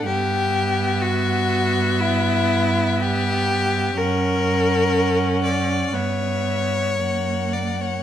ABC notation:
X:1
M:4/4
L:1/16
Q:1/4=61
K:Edor
V:1 name="Violin"
e16 | f8 e4 f4 |]
V:2 name="Violin"
G4 F4 E4 G4 | ^A6 d2 c6 d c |]
V:3 name="Viola"
B,16 | C8 B,4 ^A,4 |]
V:4 name="Cello" clef=bass
G,,16 | F,,8 G,,4 F,,4 |]